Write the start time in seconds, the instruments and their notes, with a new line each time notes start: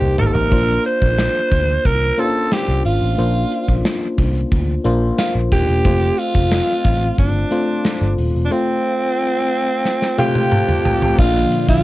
Already playing: fm electric piano A#3 D#4 G4 C5, alto saxophone G4
0.02 picked electric bass C2
0.18 picked electric bass G#1, alto saxophone A#4, floor tom
0.26 alto saxophone A4
0.33 picked electric bass A1, alto saxophone A#4, floor tom
0.51 picked electric bass A#1, fm electric piano A#3 D4 F4 C5, kick, splash
0.85 alto saxophone C5, closed hi-hat
1.02 picked electric bass A#1, kick
1.18 snare, closed hi-hat
1.52 picked electric bass D2, kick, closed hi-hat
1.68 closed hi-hat
1.85 picked electric bass C2, alto saxophone A#4, kick, closed hi-hat
2.18 fm electric piano A#3 C#4 F4 C5, alto saxophone A4, closed hi-hat
2.25 fm electric piano D4
2.52 alto saxophone G4, snare, closed hi-hat
2.68 picked electric bass C2
2.85 picked electric bass G#1, alto saxophone F4, open hi-hat
3.02 picked electric bass A1
3.18 picked electric bass A#1, fm electric piano A#3 D4 F4 C5, closed hi-hat
3.52 closed hi-hat
3.68 picked electric bass A#1, kick
3.85 snare, closed hi-hat
4.18 picked electric bass C2, kick, closed hi-hat
4.35 closed hi-hat
4.52 picked electric bass D2, kick, closed hi-hat
4.84 picked electric bass A#1, fm electric piano A#3 D4 F4 C5, closed hi-hat
5.18 alto saxophone F4, snare, closed hi-hat
5.35 picked electric bass A#1
5.52 picked electric bass D#1, alto saxophone G4, kick, open hi-hat
5.68 picked electric bass E1
5.84 picked electric bass F1, fm electric piano A3 C4 F4 C5, kick, closed hi-hat
6.18 alto saxophone F4, closed hi-hat
6.35 picked electric bass F1, kick, closed hi-hat
6.52 snare, closed hi-hat
6.85 picked electric bass A1, kick, closed hi-hat
7.02 closed hi-hat
7.18 picked electric bass G1, alto saxophone D4, kick, closed hi-hat
7.51 fm electric piano A3 C4 F4 C5, closed hi-hat
7.85 snare, closed hi-hat
8.02 picked electric bass G1
8.18 picked electric bass D#1, open hi-hat
8.35 picked electric bass E1
8.45 alto saxophone D4
8.51 fm electric piano A3 C4 F4 C5, alto saxophone C4
9.85 snare
10.02 snare
10.18 fm electric piano A3 C4 F4 C5 F5, alto saxophone G4, synth bell G5, high tom
10.35 fm electric piano G5, high tom
10.52 fm electric piano A5, mid tom
10.68 mid tom
10.85 fm electric piano A5, floor tom
11.02 floor tom
11.18 picked electric bass A#1, string machine A#2 D3 F3, fm electric piano A#3 D4 F4, alto saxophone F4, synth bell F5, kick, crash, shaker
11.35 shaker
11.52 closed hi-hat, shaker
11.68 picked electric bass A#1, alto saxophone F4, synth bell F5, kick, closed hi-hat, shaker